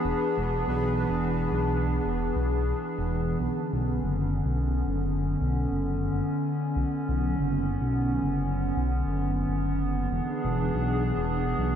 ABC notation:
X:1
M:4/4
L:1/16
Q:"Swing 16ths" 1/4=143
K:Edor
V:1 name="Synth texture"
[B,B]16- | [B,B]16 | z16 | z16 |
z16 | z16 | z16 |]
V:2 name="Ambient pad"
[E,B,D^G]16- | [E,B,D^G]16 | [D,B,C]16- | [D,B,C]16- |
[D,B,C]16- | [D,B,C]16 | [E,D^G]16 |]
V:3 name="Detuned saw bass" clef=bass
E,,, z2 E,,,3 B,,,4 E,,,4 B,,,2- | B,,,3 E,,,3 B,,,4 z2 E,,,4 | B,,, z2 B,,,3 F,,,4 B,,,4 F,,,2- | F,,,3 B,,,3 F,,,4 F,,, z4 z |
B,,, z2 B,,,3 F,,,4 B,,,4 F,,,2- | F,,,3 B,,,3 F,,,4 F,,,6 | E,,, z2 E,,,3 B,,,4 E,,,4 B,,,2 |]